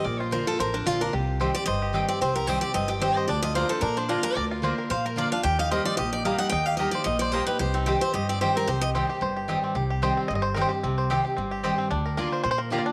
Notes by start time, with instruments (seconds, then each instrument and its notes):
0.04 upright bass A#1, steel-string acoustic guitar A#2 D5, five-string banjo A#4
0.20 five-string banjo F4, steel-string acoustic guitar C5
0.31 steel-string acoustic guitar D3 A#3 D4 F4 A#4, five-string banjo C5
0.47 steel-string acoustic guitar D4 F4 A4, five-string banjo A#4
0.59 upright bass A1, steel-string acoustic guitar F2 A#4, five-string banjo C5
0.74 steel-string acoustic guitar D4, five-string banjo A#4
0.86 upright bass A#1, steel-string acoustic guitar D3 A#3 D4 F4, five-string banjo F4
1.01 five-string banjo D4, steel-string acoustic guitar A#4
1.13 upright bass C2, steel-string acoustic guitar C3, five-string banjo G4
1.40 steel-string acoustic guitar D#3 G3 C4 G4, mandolin C4 G4 D#5 G5, five-string banjo C5
1.55 steel-string acoustic guitar C4 G4 D5, five-string banjo G4
1.66 upright bass G1, steel-string acoustic guitar G2 D#5, five-string banjo C5
1.82 five-string banjo G4
1.93 steel-string acoustic guitar D#3 G3 C4 G4, mandolin C4 G4 D#5 G5, five-string banjo G4
2.08 five-string banjo C4, steel-string acoustic guitar C4 G4 D5
2.21 upright bass C2, steel-string acoustic guitar C3 C5, five-string banjo C4
2.36 five-string banjo G4, steel-string acoustic guitar A#4
2.47 steel-string acoustic guitar D#3 G3 C4 G4 C5, mandolin C4 G4 D#5 G5, five-string banjo C4
2.61 steel-string acoustic guitar C4 G4 D5, five-string banjo G4
2.74 upright bass G1, steel-string acoustic guitar G2 D#5, five-string banjo C4
2.88 steel-string acoustic guitar G4, five-string banjo G4
3.00 steel-string acoustic guitar D#3 G3 C4 G4 C5, mandolin C4 G4 D#5 G5, five-string banjo G4
3.15 five-string banjo C5, steel-string acoustic guitar D#5
3.28 upright bass D2, steel-string acoustic guitar D3 D5, five-string banjo D4
3.42 five-string banjo F4, steel-string acoustic guitar D#5
3.54 steel-string acoustic guitar D3 A#3 D4 F4 C5, mandolin A#3 F4 D5 A#5, five-string banjo A#4
3.69 steel-string acoustic guitar D4 F4 A4, five-string banjo C5
3.81 upright bass A#2, steel-string acoustic guitar A#3 A#4, five-string banjo D4
3.97 steel-string acoustic guitar D4, five-string banjo C5
4.09 steel-string acoustic guitar D3 A#3 D4 F4, mandolin A#3 F4 D5 A#5, five-string banjo D4
4.23 steel-string acoustic guitar D4 F4 A#4, five-string banjo A#4
4.35 upright bass D2, steel-string acoustic guitar D3 D5, five-string banjo A#4
4.51 five-string banjo F4
4.62 steel-string acoustic guitar D3 A#3 D4 F4, mandolin A#3 F4 D5 A#5, five-string banjo C5
4.78 five-string banjo A#4
4.90 upright bass A#2, steel-string acoustic guitar A#3 F5, five-string banjo C5
5.06 five-string banjo A#4, steel-string acoustic guitar A#4
5.16 steel-string acoustic guitar D3 A#3 D4 F4 D5, mandolin A#3 F4 D5 A#5, five-string banjo F4
5.31 five-string banjo D4, steel-string acoustic guitar D4 F4 F5
5.43 upright bass D#2, steel-string acoustic guitar D#3 G5, five-string banjo G4
5.59 five-string banjo D#4, steel-string acoustic guitar F5
5.71 steel-string acoustic guitar G3 A#3 D#4 G4 D#5, mandolin A#3 G4 D#5 A#5, five-string banjo C5
5.85 five-string banjo D#4, steel-string acoustic guitar D5
5.97 upright bass A#1, steel-string acoustic guitar A#2 D#5, five-string banjo G4
6.13 five-string banjo D#4, steel-string acoustic guitar D5
6.25 steel-string acoustic guitar G3 A#3 D#4 G4 F5, mandolin A#3 G4 D#5 A#5, five-string banjo G4
6.38 five-string banjo D#4, steel-string acoustic guitar F#5
6.49 upright bass D#2, steel-string acoustic guitar D#3 G5, five-string banjo D#4
6.66 five-string banjo G4, steel-string acoustic guitar F5
6.77 steel-string acoustic guitar G3 A#3 D#4 D#5, mandolin A#3 G4 D#5 A#5, five-string banjo G4
6.82 steel-string acoustic guitar G4
6.91 steel-string acoustic guitar D#4 G4 D5, five-string banjo C5
7.04 upright bass A#1, steel-string acoustic guitar A#2 D#5, five-string banjo D#4
7.19 five-string banjo C5, steel-string acoustic guitar D5
7.32 steel-string acoustic guitar G3 A#3 D#4 G4 C5, mandolin A#3 G4 D#5 A#5, five-string banjo D#4
7.47 steel-string acoustic guitar D#4 G4 B4, five-string banjo G4
7.59 upright bass C2, steel-string acoustic guitar C3 C5, five-string banjo G4
7.74 five-string banjo C4, steel-string acoustic guitar D#4
7.86 steel-string acoustic guitar D#3 G3 C4 G4, mandolin C4 G4 D#5 G5, five-string banjo C5
8.01 five-string banjo C4, steel-string acoustic guitar C4 G4 C5
8.14 upright bass G1, steel-string acoustic guitar G2 D#5, five-string banjo G4
8.29 five-string banjo C4, steel-string acoustic guitar D5
8.41 steel-string acoustic guitar D#3 G3 C4 G4 C5, mandolin C4 G4 D#5 G5, five-string banjo G4
8.56 five-string banjo C4, steel-string acoustic guitar A#4
8.68 upright bass C2, steel-string acoustic guitar C3 C5, five-string banjo G4
8.81 steel-string acoustic guitar D#5
8.95 steel-string acoustic guitar D#3 G3 C4 G4, mandolin C4 G4 D#5 G5, five-string banjo C5
9.09 steel-string acoustic guitar C4 G4, five-string banjo G4
9.21 upright bass G1, steel-string acoustic guitar G2, five-string banjo C5
9.36 five-string banjo G4
9.48 steel-string acoustic guitar D#3 G3 C4 G4, mandolin C4 G4 D#5 G5, five-string banjo G4
9.64 five-string banjo C4
9.75 upright bass C2, steel-string acoustic guitar C3, five-string banjo G4
9.90 five-string banjo G4
10.02 steel-string acoustic guitar D#3 G3 C4 G4, mandolin C4 G4 D#5 G5, five-string banjo C5
10.17 five-string banjo C4
10.28 upright bass G1, steel-string acoustic guitar G2, five-string banjo D#5
10.35 five-string banjo D#5
10.42 five-string banjo C5
10.54 steel-string acoustic guitar D#3 G3 C4 G4, mandolin C4 G4 D#5 G5, five-string banjo A#4
10.61 five-string banjo C5
10.69 five-string banjo G4, steel-string acoustic guitar G4
10.73 steel-string acoustic guitar C4
10.83 upright bass C2, steel-string acoustic guitar C3, five-string banjo C4
10.98 five-string banjo C5
11.10 steel-string acoustic guitar D#3 G3 C4 G4, mandolin C4 G4 D#5 G5, five-string banjo G4
11.25 steel-string acoustic guitar C4 G4, five-string banjo G4
11.37 upright bass G1, steel-string acoustic guitar G2, five-string banjo C4
11.51 five-string banjo G4
11.63 steel-string acoustic guitar D#3 G3 C4 G4, mandolin C4 G4 D#5 G5, five-string banjo C5
11.78 five-string banjo C4
11.91 upright bass D2, steel-string acoustic guitar D3, five-string banjo D4
12.06 five-string banjo A#4
12.17 steel-string acoustic guitar D3 A#3 D4 F4, mandolin A#3 F4 D5 A#5, five-string banjo A#4
12.32 five-string banjo C5
12.44 upright bass A#2, steel-string acoustic guitar A#3, five-string banjo C5
12.51 five-string banjo C5
12.58 five-string banjo A#4
12.70 steel-string acoustic guitar D3 A#3 D4 F4, mandolin A#3 F4 D5 A#5, five-string banjo G4
12.78 five-string banjo F4
12.86 five-string banjo D4